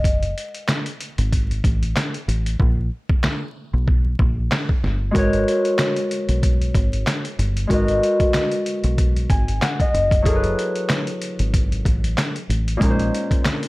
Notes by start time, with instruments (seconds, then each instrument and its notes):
Already playing: fingered electric bass F#1, harp D#5 F#5 G#5
0.04 kick, closed hi-hat
0.23 closed hi-hat
0.38 closed hi-hat
0.55 closed hi-hat
0.68 snare, clap, closed hi-hat
0.86 closed hi-hat
1.00 closed hi-hat
1.18 fingered electric bass G#1, closed hi-hat
1.32 kick, closed hi-hat
1.51 closed hi-hat
1.64 fingered electric bass A1, kick, closed hi-hat
1.83 closed hi-hat
1.96 snare, clap, closed hi-hat
2.14 closed hi-hat
2.28 fingered electric bass A1, closed hi-hat
2.46 closed hi-hat
2.60 fingered electric bass A#1, kick
3.09 kick
3.23 snare, clap
3.73 fingered electric bass B1
3.88 kick
4.19 fingered electric bass A#1, kick
4.51 snare, clap
4.69 kick
4.83 fingered electric bass G1, snare
5.11 harp G#3 F#4 A#4, kick
5.15 fingered electric bass G#1, harp B4 C#5, closed hi-hat
5.33 closed hi-hat
5.48 closed hi-hat
5.65 closed hi-hat
5.78 snare, clap, closed hi-hat
5.96 closed hi-hat
6.11 closed hi-hat
6.29 fingered electric bass B1, closed hi-hat
6.43 kick, closed hi-hat
6.61 closed hi-hat
6.74 fingered electric bass G#1, kick, closed hi-hat
6.93 closed hi-hat
7.07 snare, clap, closed hi-hat
7.25 closed hi-hat
7.39 fingered electric bass G1, closed hi-hat
7.57 closed hi-hat
7.67 fingered electric bass G#1, harp G#3 F#4 A#4, kick, closed hi-hat
7.72 harp B4 D#5
7.88 closed hi-hat
8.03 closed hi-hat
8.20 kick, closed hi-hat
8.34 snare, clap, closed hi-hat
8.51 closed hi-hat
8.66 closed hi-hat
8.84 fingered electric bass B1, closed hi-hat
8.98 kick, closed hi-hat
9.17 closed hi-hat
9.30 fingered electric bass G#1, harp G#5, kick, closed hi-hat
9.48 closed hi-hat
9.62 harp F#5, snare, clap, closed hi-hat
9.80 harp D#5, kick, closed hi-hat
9.94 fingered electric bass F#1, closed hi-hat
10.11 kick, closed hi-hat
10.22 harp F#3 E4 G#4, kick
10.26 harp A4 A#4, closed hi-hat
10.35 harp B4
10.44 closed hi-hat
10.59 closed hi-hat
10.76 closed hi-hat
10.89 snare, clap, closed hi-hat
11.07 closed hi-hat
11.22 closed hi-hat
11.39 fingered electric bass G#1, closed hi-hat
11.54 kick, closed hi-hat
11.72 closed hi-hat
11.85 fingered electric bass A1, kick, closed hi-hat
12.04 closed hi-hat
12.18 snare, clap, closed hi-hat
12.36 closed hi-hat
12.49 fingered electric bass A1, closed hi-hat
12.68 closed hi-hat
12.77 harp A#2 G#3 C#4
12.81 fingered electric bass A#1, harp D#4 A#4, kick, closed hi-hat
12.90 harp C5
13.00 closed hi-hat
13.15 closed hi-hat
13.31 kick, closed hi-hat
13.45 snare, clap, closed hi-hat
13.63 closed hi-hat